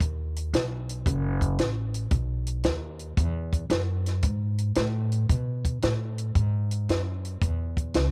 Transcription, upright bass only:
0, 0, Header, 1, 2, 480
1, 0, Start_track
1, 0, Tempo, 529568
1, 961, Time_signature, 4, 2, 24, 8
1, 7353, End_track
2, 0, Start_track
2, 0, Title_t, "Upright bass"
2, 0, Program_c, 0, 32
2, 5, Note_on_c, 0, 39, 76
2, 469, Note_off_c, 0, 39, 0
2, 484, Note_on_c, 0, 35, 85
2, 948, Note_off_c, 0, 35, 0
2, 963, Note_on_c, 0, 30, 86
2, 1427, Note_off_c, 0, 30, 0
2, 1439, Note_on_c, 0, 33, 87
2, 1906, Note_off_c, 0, 33, 0
2, 1914, Note_on_c, 0, 35, 79
2, 2383, Note_off_c, 0, 35, 0
2, 2397, Note_on_c, 0, 39, 88
2, 2865, Note_off_c, 0, 39, 0
2, 2876, Note_on_c, 0, 40, 87
2, 3344, Note_off_c, 0, 40, 0
2, 3352, Note_on_c, 0, 42, 90
2, 3822, Note_off_c, 0, 42, 0
2, 3834, Note_on_c, 0, 44, 79
2, 4303, Note_off_c, 0, 44, 0
2, 4319, Note_on_c, 0, 45, 95
2, 4786, Note_off_c, 0, 45, 0
2, 4798, Note_on_c, 0, 47, 80
2, 5266, Note_off_c, 0, 47, 0
2, 5286, Note_on_c, 0, 45, 89
2, 5750, Note_off_c, 0, 45, 0
2, 5758, Note_on_c, 0, 44, 78
2, 6226, Note_off_c, 0, 44, 0
2, 6246, Note_on_c, 0, 42, 80
2, 6710, Note_off_c, 0, 42, 0
2, 6724, Note_on_c, 0, 40, 80
2, 7189, Note_off_c, 0, 40, 0
2, 7202, Note_on_c, 0, 37, 83
2, 7353, Note_off_c, 0, 37, 0
2, 7353, End_track
0, 0, End_of_file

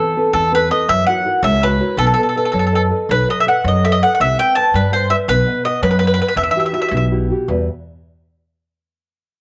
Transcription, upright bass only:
0, 0, Header, 1, 2, 480
1, 0, Start_track
1, 0, Key_signature, 1, "minor"
1, 0, Tempo, 365408
1, 1168, Time_signature, 6, 3, 24, 8
1, 8379, Tempo, 370142
1, 12306, End_track
2, 0, Start_track
2, 0, Title_t, "Upright bass"
2, 0, Program_c, 0, 32
2, 437, Note_on_c, 0, 40, 100
2, 906, Note_off_c, 0, 40, 0
2, 1162, Note_on_c, 0, 42, 106
2, 1323, Note_off_c, 0, 42, 0
2, 1872, Note_on_c, 0, 37, 122
2, 2345, Note_off_c, 0, 37, 0
2, 2591, Note_on_c, 0, 35, 106
2, 2757, Note_off_c, 0, 35, 0
2, 3324, Note_on_c, 0, 42, 94
2, 3806, Note_off_c, 0, 42, 0
2, 4060, Note_on_c, 0, 35, 92
2, 4226, Note_off_c, 0, 35, 0
2, 4786, Note_on_c, 0, 42, 108
2, 5262, Note_off_c, 0, 42, 0
2, 5518, Note_on_c, 0, 36, 110
2, 5682, Note_off_c, 0, 36, 0
2, 6225, Note_on_c, 0, 43, 105
2, 6692, Note_off_c, 0, 43, 0
2, 6938, Note_on_c, 0, 35, 110
2, 7101, Note_off_c, 0, 35, 0
2, 7651, Note_on_c, 0, 42, 124
2, 8119, Note_off_c, 0, 42, 0
2, 8358, Note_on_c, 0, 40, 100
2, 8523, Note_off_c, 0, 40, 0
2, 9070, Note_on_c, 0, 35, 104
2, 9556, Note_off_c, 0, 35, 0
2, 9810, Note_on_c, 0, 40, 96
2, 10051, Note_off_c, 0, 40, 0
2, 12306, End_track
0, 0, End_of_file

